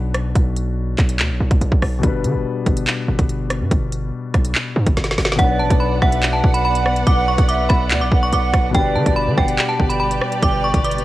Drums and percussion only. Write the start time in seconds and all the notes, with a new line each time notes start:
0.14 cross-stick, closed hi-hat
0.35 kick, closed hi-hat
0.56 closed hi-hat
0.98 kick, clap, closed hi-hat
1.09 closed hi-hat
1.19 clap
1.51 kick, closed hi-hat
1.61 closed hi-hat
1.72 kick
1.82 cross-stick, open hi-hat
2.03 kick, closed hi-hat
2.24 closed hi-hat
2.66 kick, closed hi-hat
2.77 closed hi-hat
2.87 clap
3.19 kick, closed hi-hat
3.29 closed hi-hat
3.50 cross-stick, closed hi-hat
3.71 kick, closed hi-hat
3.92 closed hi-hat
4.34 kick, cross-stick, closed hi-hat
4.45 closed hi-hat
4.55 clap
4.87 kick, closed hi-hat
4.97 snare, closed hi-hat
5.04 snare, closed hi-hat
5.11 snare, closed hi-hat
5.18 snare, closed hi-hat, open hi-hat
5.25 snare, closed hi-hat
5.32 snare, closed hi-hat
5.39 kick, closed hi-hat
5.70 kick, closed hi-hat
6.02 kick, cross-stick
6.12 closed hi-hat
6.23 clap
6.44 kick
6.54 closed hi-hat
6.75 closed hi-hat
6.86 cross-stick
6.96 closed hi-hat
7.07 kick, closed hi-hat
7.38 kick, closed hi-hat
7.49 closed hi-hat
7.70 kick, cross-stick, closed hi-hat
7.91 clap, closed hi-hat
8.12 kick
8.33 closed hi-hat
8.54 kick, cross-stick, closed hi-hat
8.75 kick, closed hi-hat
9.06 kick, closed hi-hat
9.38 kick, cross-stick
9.48 closed hi-hat
9.59 clap
9.80 kick
9.90 closed hi-hat
10.11 closed hi-hat
10.21 cross-stick
10.32 closed hi-hat
10.43 kick, closed hi-hat
10.74 kick, closed hi-hat
10.84 closed hi-hat
10.91 closed hi-hat
10.98 closed hi-hat